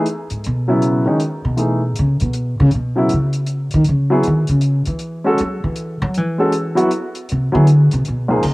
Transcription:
0.06 closed hi-hat
0.30 G#2, closed hi-hat
0.44 B2, closed hi-hat
0.68 C#3 F#3 B3 E4
0.82 closed hi-hat
1.05 D#3 G#3 C#4 D#4
1.20 closed hi-hat
1.45 B2
1.57 E3 A3 D#4 G#4, closed hi-hat
1.96 C#3, closed hi-hat
2.20 B2, closed hi-hat
2.33 closed hi-hat
2.60 C#3
2.71 B2, closed hi-hat
2.95 C#3 F#3 B3 E4
3.09 closed hi-hat
3.13 C#3
3.33 closed hi-hat
3.46 closed hi-hat
3.71 D#3, closed hi-hat
3.84 closed hi-hat
3.89 C#3
4.10 F#3 B3 E4 G#4
4.23 closed hi-hat
4.27 D#3
4.47 C#3, closed hi-hat
4.61 closed hi-hat
4.86 E3, closed hi-hat
4.99 closed hi-hat
5.24 G#3 C#4 F#4 A4
5.38 F#3, closed hi-hat
5.64 E3
5.76 closed hi-hat
6.02 F#3
6.14 E3, closed hi-hat
6.38 G#3 C#4 F#4 A4
6.52 closed hi-hat
6.75 F#3 B3 E4 F#4, closed hi-hat
6.91 closed hi-hat
7.15 closed hi-hat
7.29 C3, closed hi-hat
7.52 D3 F#3 B3 E4 G#4
7.67 closed hi-hat
7.91 C3, closed hi-hat
8.05 B2, closed hi-hat
8.28 C#2 F3 A#3 D#4 G#4
8.43 C#3, ride

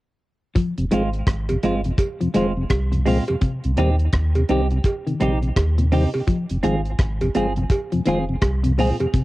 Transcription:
0.55 F3, kick, closed hi-hat
0.78 F1 F2 C3, closed hi-hat
0.91 G#1 D#3 F3 G#3 C4 F4, closed hi-hat
1.13 closed hi-hat
1.27 G#1, kick, cross-stick, closed hi-hat
1.49 F2 C3, closed hi-hat, cowbell
1.63 G1 F3 G#3 C4 F4, closed hi-hat
1.84 F2 C3, muted clean electric guitar stroke, closed hi-hat
1.98 kick, closed hi-hat, cowbell
2.21 F2 C3 F3, closed hi-hat
2.34 F1 D#3 F3 G#3 C4 F4, closed hi-hat
2.57 F2 C3
2.70 C2, kick, cross-stick, closed hi-hat, cowbell
2.92 F2 C3, closed hi-hat
3.06 A#2 F3 G#3 C4 F4, open hi-hat
3.27 F2 C3, closed hi-hat, cowbell
3.41 C3, kick, closed hi-hat
3.64 C2 C3, closed hi-hat
3.77 D#2 A#2 D#3 G3 C4 D#4 G4, closed hi-hat
3.99 closed hi-hat
4.12 D#2, kick, cross-stick, closed hi-hat
4.35 C3, closed hi-hat, cowbell
4.49 C2 D#3 G3 C4 D#4 G4, closed hi-hat
4.70 C3, muted clean electric guitar stroke, closed hi-hat
4.84 kick, closed hi-hat, cowbell
5.07 C3 D#3, closed hi-hat
5.20 A#1 C3 D#3 G3 C4 D#4 G4, closed hi-hat
5.42 C3, closed hi-hat
5.56 D#2, kick, cross-stick, closed hi-hat, cowbell
5.78 A#2 C3, closed hi-hat
5.92 C3 D#3 G3 C4 D#4 G4, open hi-hat
6.14 C3, cowbell
6.27 F3, kick, closed hi-hat
6.50 F1 F2 C3, closed hi-hat
6.63 G#1 D#3 F3 G#3 C4 F4 G#4, closed hi-hat
6.85 closed hi-hat
6.99 G#1, kick, cross-stick, closed hi-hat
7.21 F2 C3, closed hi-hat, cowbell
7.35 G1 F3 G#3 C4 F4 G#4, closed hi-hat
7.56 F2 C3, muted clean electric guitar stroke, closed hi-hat
7.70 kick, closed hi-hat, cowbell
7.92 F2 C3 F3, closed hi-hat
8.06 F1 D#3 F3 G#3 C4 F4 G#4, closed hi-hat
8.29 F2 C3
8.42 C2, kick, cross-stick, closed hi-hat, cowbell
8.63 F2 C3, closed hi-hat
8.78 A#2 F3 G#3 C4 F4 G#4, open hi-hat
8.99 F2 C3, closed hi-hat, cowbell
9.13 C3, kick, closed hi-hat

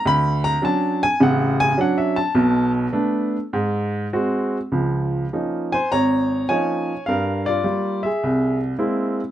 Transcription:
0.06 D2 B5
0.44 A#5
0.62 F#3 C#4 D4 A5
1.03 G#5
1.20 A1 C#3 F#5
1.60 G#5
1.78 F#3 C#4 D4 F#5
1.98 E5
2.16 A5
2.35 B1 B2
2.93 A3 B3 D4
3.53 G#2
4.13 G#3 C4 F#4
4.72 C#2 F3
5.33 F3 A#3 C#4 D#4
5.72 C5 G#5
5.92 G#1 C#5 A#5
6.49 F3 A#3 C#4 D#4 C#5 G#5
7.06 G2 A#4 F5
7.46 F4 D5
7.64 G3 A#3 F4
8.03 G#4 E5
8.23 C2
8.78 G#3 A#3 C4 E4

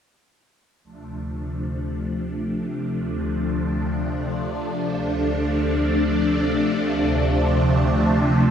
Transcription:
0.84 D2 C3 F3 A3 D4
2.83 D2
4.81 D2
6.80 D2

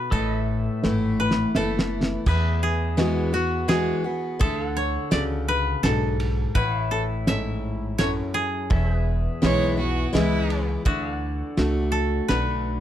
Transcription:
Already playing: A4 B4 D#5
0.11 A1 A2 A4 B4 D#5, kick, ride
0.34 E5
0.82 G#1 E3 A3 B3 E4 A4 B4, snare
1.20 B4 B5
1.31 snare
1.55 F#1 E3 A3 B3 E4 A4 B4 E5, snare
1.79 snare
2.03 snare
2.26 E2 G#4 B4 E5, kick, crash
2.63 G#4
2.97 E3 G#3 B3 E4 F#4 G#4, snare, ride
3.33 B3 F#4
3.68 E3 G#3 B3 E4 F#4 G#4, snare, ride
4.04 B3 F#4
4.39 D2 D3 G#4 A4 E5, kick, ride
4.61 A4
4.68 F#5
4.77 C#5
5.11 C#2 C#3 F#4 A4 D5, snare, ride
5.48 B4
5.83 B1 G#2 D4 F#4 A4, snare, ride
6.20 ride
6.55 A1 A2 E4 B4 C#5 F#5, kick, ride
6.83 E5
6.91 A4
7.26 G#2 C#4 E4 A4 E5, snare, ride
7.98 F#2 C#4 E4 A4 C#5, snare, ride
8.34 G#4
8.70 E1 E2 A4 C#5 E5, kick, ride
8.91 G#4
8.97 B4
9.42 B1 E3 G#3 B3 E4 G#4 C#5, snare, ride
9.77 B3 E4 F#4
10.13 C#2 E3 G#3 B3 E4 G#4, snare, ride
10.50 ride
10.85 D2 D3 F#4 G#4 D5 E5, kick, ride
11.06 A4
11.13 F#5
11.57 C#2 A3 D4 F#4 A4, snare, ride
11.92 A4
12.28 B1 D3 A3 D4 F#4 A4 B4, snare, ride

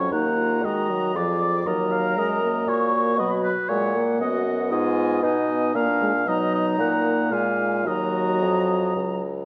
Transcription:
Already playing: F2 F#3 C#4 C#5 C#6
0.11 D#2 A#3 D#4 F#5 A#5
0.38 F4
0.63 D#3 G#3 F#4 D#5 A#5
0.90 F#3
1.14 F2 F3 G#4 D5 D6
1.41 D5
1.65 D#2 F#3 A#4 D#5 A#5
1.92 F5
2.17 F#2 G#3 D#5
2.43 A#3
2.67 A#2 F#4 C#5 C#6
3.17 B2 F#3 D#5 B5
3.44 B4
3.69 A#2 G#3 C#5 F#5
3.95 A#3
4.20 F#2 B3 F#4 D#5
4.47 B3
4.71 G#2 F4 D#5 G#5
5.23 B2 D#4 D#5 G#5
5.75 A#2 A#3 D4 F5 A#5
6.01 G#3
6.26 B2 F#3 D#4 D#5 A#5
6.55 D#5
6.78 A#2 A#3 F#5
7.31 A#2 G#3 F4 F5 G#5
7.85 D#2 F#3 F#4 D#5 A#5
8.41 F2
8.96 C#2

